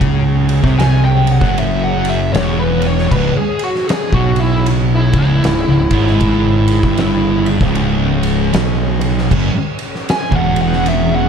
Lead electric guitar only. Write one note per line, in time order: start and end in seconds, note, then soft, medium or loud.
0.79 1.04 G#5 loud
1.05 1.30 G5 medium
1.32 1.57 F#5 medium
1.58 1.83 E5 medium
1.84 2.08 F#5 medium
2.09 2.33 E5 medium
2.33 2.59 C#5 medium
2.59 2.85 B4 medium
2.87 3.12 C#5 medium
3.11 3.36 B4 medium
3.37 3.63 G#4 medium
3.64 3.89 F#4 medium
3.87 4.13 G#4 medium
4.14 4.40 F#4 medium
4.41 4.66 E4 medium
4.95 5.18 E4 medium
5.19 7.47 E4 medium
10.10 10.35 G#5 loud
10.36 10.60 F#5 medium
10.62 10.86 F#5 medium
10.88 11.12 E5 loud
11.15 11.29 F#5 medium